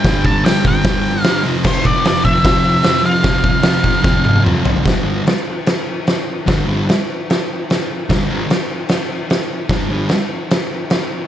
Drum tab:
CC |----------------|x---------------|----------------|x---x---x---x---|
HH |o---o---o---o---|----o---o---o---|o---o-----------|----------------|
SD |o---o---o---o---|o---o---o---o---|o---o---o-------|o---o---o---o---|
T1 |----------------|----------------|----------oo----|----------------|
T2 |----------------|----------------|------------o---|----------------|
FT |----------------|----------------|--------------oo|----------------|
BD |o-o---o-o-------|o-o---o-o-------|o-o---o-o-------|o---------------|

CC |x---x---x---x---|x---x---x---x---|x---x---x---x---|
HH |----------------|----------------|----------------|
SD |o---o---o---o---|o---o---o---o---|o---o---o---o---|
T1 |----------------|----------------|----------------|
T2 |----------------|----------------|----------------|
FT |----------------|----------------|----------------|
BD |o---------------|o---------------|o---------------|